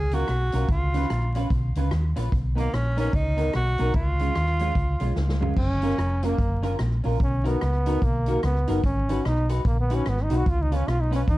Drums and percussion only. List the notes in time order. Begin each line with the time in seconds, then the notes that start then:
0.11 closed hi-hat
0.27 cross-stick, closed hi-hat
0.52 closed hi-hat
0.68 kick, closed hi-hat
0.94 closed hi-hat
1.02 cross-stick
1.10 cross-stick, closed hi-hat
1.35 closed hi-hat
1.50 kick, closed hi-hat
1.75 closed hi-hat
1.91 cross-stick, closed hi-hat
2.16 closed hi-hat
2.32 kick, closed hi-hat
2.58 closed hi-hat
2.73 cross-stick, closed hi-hat
2.98 closed hi-hat
3.13 kick, closed hi-hat
3.38 closed hi-hat
3.53 cross-stick, closed hi-hat
3.78 closed hi-hat
3.93 kick, closed hi-hat
4.19 closed hi-hat
4.35 cross-stick, closed hi-hat
4.59 closed hi-hat
4.75 kick, closed hi-hat
5.00 closed hi-hat
5.16 snare
5.29 snare
5.42 floor tom
5.56 kick, crash
5.82 closed hi-hat
5.90 cross-stick
5.98 cross-stick, closed hi-hat
6.22 closed hi-hat
6.38 kick, closed hi-hat
6.63 cross-stick, closed hi-hat
6.79 cross-stick, closed hi-hat
7.04 open hi-hat
7.20 kick, closed hi-hat
7.45 closed hi-hat
7.61 cross-stick, closed hi-hat
7.86 closed hi-hat
8.02 kick, closed hi-hat
8.26 closed hi-hat
8.43 cross-stick, closed hi-hat
8.67 closed hi-hat
8.84 kick, closed hi-hat
9.09 closed hi-hat
9.25 cross-stick, closed hi-hat
9.49 closed hi-hat
9.65 kick, closed hi-hat
9.90 closed hi-hat
10.05 cross-stick, closed hi-hat
10.30 closed hi-hat
10.46 kick, closed hi-hat
10.72 closed hi-hat
10.88 cross-stick, closed hi-hat
11.12 closed hi-hat
11.28 kick, closed hi-hat